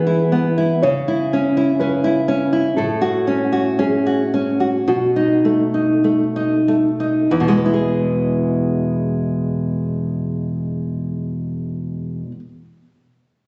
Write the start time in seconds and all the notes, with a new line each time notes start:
Already playing: E3 B3 G#4
0.07 E4
0.32 B3
0.58 E4
0.82 C#3 C#5
1.08 E4
1.33 C#4
1.57 E4
1.80 C#4 B4
2.04 E4
2.28 C#4
2.53 E4
2.77 A2 A4
3.02 F#4
3.27 C#4
3.53 F#4
3.79 C#4 G#4
4.07 F#4
4.34 C#4
4.60 F#4
4.88 B2 F#4
5.16 D#4
5.45 A3
5.74 D#4
6.04 A3
6.36 D#4
6.68 A3
7.00 D#4
7.31 E2 E4
7.40 B2
7.48 G#3
7.57 B3
7.66 E4
7.74 G#4